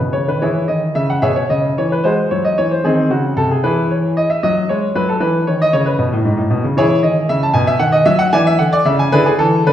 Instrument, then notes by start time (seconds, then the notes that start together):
grand piano
Already playing: B4
0.00 B2
0.12 C#3 C#5
0.28 D#3 B4
0.42 E3 E4 G#4 C#5
0.68 D#3 D#5
0.95 C#3 E5
1.10 F#5
1.22 B2 G#4 C#5 E5
1.36 C#5
1.50 C#3 D#5
1.78 E3 C#5
1.92 B4
2.04 G#3 F#4 G#4 C5
2.31 F#3 C#5
2.45 D#5
2.58 E3 C#5
2.71 C5
2.84 D#3 C4 D#4 G#4
3.10 C#3 F#4
3.36 C3 A4
3.51 G#4
3.64 E3 E4 G#4 B4
3.91 C#5
4.17 D#5
4.30 E5
4.43 F#3 D#5
4.69 G#3 C#5
4.95 F#3 B4
5.09 A4
5.20 E3 B4
5.47 D#3 C#5
5.62 D#5
5.73 C#3 C#5
5.86 B4
5.99 B2
6.12 A2
6.25 G#2
6.37 A2
6.50 B2
6.64 C#3
6.77 E3 E4 G#4 C#5
7.03 D#3 D#5
7.29 C#3 E5
7.43 A5
7.53 B2 G#5
7.67 E5
7.79 D#3 F#5
7.92 D#5
8.05 F#3 E5
8.19 F#5
8.33 E3 D5 E5 G#5
8.47 E5
8.59 D3 F#5
8.73 D5
8.85 C#3 E5
8.99 G#5
9.12 D3 E4 G#4 B4
9.26 G#4
9.38 E3 A4
9.67 D3 B4